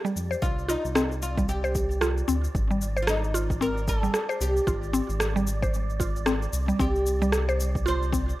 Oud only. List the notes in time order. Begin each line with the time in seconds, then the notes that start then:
Already playing: G4
0.42 F4
0.69 D#4
1.22 F4
1.49 G4
3.02 F4
3.09 D#4
3.62 A#4
3.89 G#4
4.41 G4
6.81 G4
7.88 C5